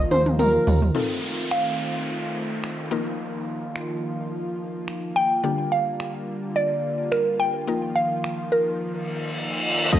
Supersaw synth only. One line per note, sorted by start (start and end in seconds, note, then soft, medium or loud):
0.00 0.93 D#3 medium
0.00 0.93 F3 medium
0.00 0.93 A#3 medium
0.00 0.93 F4 medium
0.95 5.40 D#3 medium
0.95 2.90 A3 medium
0.95 2.90 C4 medium
0.95 2.90 F4 medium
2.91 5.41 F3 medium
2.91 9.88 A#3 medium
2.91 5.41 F4 medium
5.44 7.66 D3 medium
5.44 7.66 G3 medium
5.44 9.88 F4 medium
7.68 9.90 D#3 medium
7.68 9.90 F3 medium